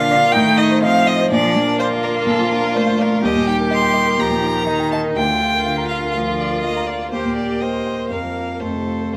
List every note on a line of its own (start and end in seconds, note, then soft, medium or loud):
0.00 0.31 A#2 medium
0.00 0.36 F3 medium
0.00 0.36 D4 medium
0.00 0.34 F4 medium
0.00 0.24 A#4 medium
0.00 0.11 D5 medium
0.00 0.18 F5 medium
0.00 0.33 F5 loud
0.11 0.19 D3 medium
0.11 0.30 D5 medium
0.24 0.35 A#4 medium
0.31 0.85 D#3 medium
0.31 0.81 D#4 medium
0.31 0.59 G5 loud
0.36 1.29 A2 medium
0.47 0.66 A3 medium
0.57 0.77 D#4 medium
0.57 0.82 D#5 loud
0.70 0.89 C5 medium
0.82 1.31 F3 medium
0.82 1.30 C4 medium
0.82 1.01 D#5 medium
0.82 1.08 F5 loud
0.95 1.14 F5 medium
1.06 1.26 D#5 medium
1.06 1.30 D#5 loud
1.19 1.31 C5 medium
1.30 2.24 A#2 medium
1.30 1.59 F3 medium
1.30 1.80 D4 medium
1.30 1.78 D5 loud
1.42 1.62 F3 medium
1.55 2.77 A#3 medium
1.55 1.74 D4 medium
1.68 1.87 A#4 medium
1.79 3.23 F4 medium
1.79 1.87 C5 medium
1.79 1.99 D5 medium
1.93 2.11 F5 medium
2.03 2.11 A#4 medium
2.03 2.23 D5 medium
2.16 2.34 A#4 medium
2.26 3.20 A#2 medium
2.26 2.50 A4 medium
2.39 2.58 F3 medium
2.50 2.70 D4 medium
2.50 2.78 A#4 medium
2.62 2.82 A#4 medium
2.74 3.24 A3 medium
2.74 3.02 C5 medium
2.74 2.94 D5 medium
2.86 3.06 F5 medium
2.99 3.26 A#4 medium
2.99 3.18 D5 medium
3.12 3.24 A#4 medium
3.23 4.16 D#2 medium
3.23 4.21 G3 medium
3.23 4.65 G4 medium
3.23 3.47 D#5 medium
3.35 3.55 A#2 medium
3.48 3.67 D#4 medium
3.48 3.56 G5 medium
3.59 3.78 A#4 soft
3.71 3.90 D#5 medium
3.71 4.21 C6 loud
3.82 4.02 G5 medium
3.93 4.14 D#5 medium
4.06 4.26 A#4 medium
4.18 5.14 D#2 medium
4.18 4.69 F3 medium
4.18 4.91 A#5 medium
4.30 4.50 A#2 soft
4.42 4.62 D#4 soft
4.54 4.75 A#4 medium
4.66 5.15 D#3 medium
4.66 5.19 D#4 medium
4.66 4.87 D#5 medium
4.79 5.00 G5 medium
4.92 5.12 D#5 medium
4.92 5.00 A5 medium
5.04 5.17 A#4 soft
5.16 6.12 D2 medium
5.16 5.65 D3 medium
5.16 7.13 F4 medium
5.16 5.88 G5 loud
5.30 5.49 D3 soft
5.42 5.61 F4 soft
5.54 5.74 A#4 soft
5.66 6.19 D3 medium
5.66 5.86 F5 medium
5.78 5.98 A#5 soft
5.88 6.11 F5 medium
5.88 6.11 F5 soft
6.04 6.23 A#4 soft
6.11 7.10 D2 soft
6.11 6.19 F5 medium
6.17 6.64 F3 soft
6.28 6.47 D3 soft
6.37 6.59 F4 soft
6.37 6.60 D5 medium
6.51 6.71 A#4 soft
6.61 7.13 A#3 soft
6.61 6.87 D#5 medium
6.61 6.84 F5 soft
6.77 6.96 A#5 soft
6.86 7.11 D5 medium
6.86 7.08 F5 soft
7.02 7.14 A#4 soft
7.11 8.08 D#2 soft
7.11 7.59 A#3 soft
7.11 7.63 G4 medium
7.11 7.35 C5 medium
7.25 7.45 A#2 soft
7.35 7.57 G4 soft
7.35 7.62 D5 medium
7.50 7.70 A#4 soft
7.60 8.11 A#3 soft
7.60 8.13 C5 medium
7.60 8.09 D#5 medium
7.60 7.82 G5 soft
7.73 7.94 C6 soft
7.87 8.06 G5 soft
7.98 8.11 A#4 soft
8.10 8.60 F2 soft
8.10 8.63 A#3 soft
8.10 8.61 A#4 soft
8.10 8.61 F5 medium
8.24 8.44 F3 soft
8.37 8.57 F4 soft
8.49 8.62 A#4 soft
8.60 9.12 F2 soft
8.60 9.15 A3 soft
8.60 9.14 A4 soft
8.60 9.12 C5 medium
8.74 8.95 C3 soft
8.87 9.08 F4 soft
9.01 9.14 A4 soft
9.13 9.17 A#3 soft
9.13 9.17 F4 soft
9.13 9.17 C5 medium